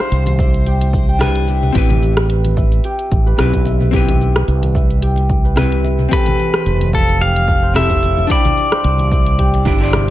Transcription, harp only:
Already playing: G4 F5
0.00 C5
0.39 E5
0.67 G4
1.09 G5
1.48 G4
1.75 G4
2.18 B4
2.57 E5
2.85 G4
3.27 B4
3.66 E5
3.93 G4
4.36 B4
4.75 E5
5.02 G4
5.45 B4
5.84 E5
6.11 G4
6.54 C5
6.93 F5
7.21 G4
7.63 C5
8.02 F5
8.30 G4
8.71 C5
9.11 E5
9.39 G4
9.81 C5

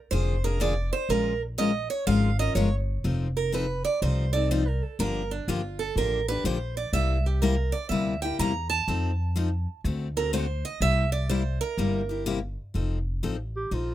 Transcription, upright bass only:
0.12 F1
1.09 A#1
2.07 G#1
2.55 G1
3.04 F1
4.02 C2
4.99 G1
5.48 G1
5.96 A1
6.44 A#1
6.93 C2
7.90 D2
8.39 E2
8.88 F2
9.84 D2
10.80 C2
11.77 G1
12.75 F1
13.23 A1
13.71 A#1

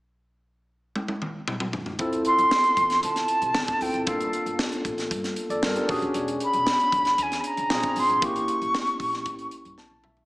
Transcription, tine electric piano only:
1.99 C4 E4 F4 A4
3.81 C4 E4 F4 A4
4.06 A#3 D4 F4 A4
5.50 A4 D5
5.63 F4 A#4
5.76 D4 G4
5.88 C#4 D4 F#4 G#4
7.70 C4 D4 F4 G#4
8.21 A#3 C#4 E4 G4
9.78 A5
10.05 E5

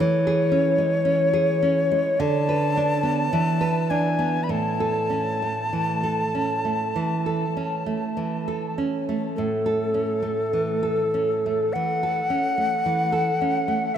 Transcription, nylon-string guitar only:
0.00 E3
0.27 G#4
0.52 C#4
0.78 G#3
1.05 C#4
1.33 G#4
1.63 C#4
1.91 G#3
2.20 D3
2.49 B4
2.77 D4
3.03 B3
3.33 E3
3.61 B4
3.91 D4
4.19 B3
4.49 A2
4.80 A4
5.10 C#4
5.42 A3
5.73 E3
6.03 A4
6.35 C#4
6.65 A3
6.96 E3
7.26 A4
7.57 C#4
7.86 A3
8.17 E3
8.48 A4
8.78 C#4
9.09 A3
9.38 A2
9.66 A4
9.94 C#4
10.22 A3
10.53 E3
10.83 A4
11.14 C#4
11.46 A3
11.75 E3
12.03 A4
12.30 C#4
12.58 A3
12.86 E3
13.12 A4
13.41 C#4
13.68 A3

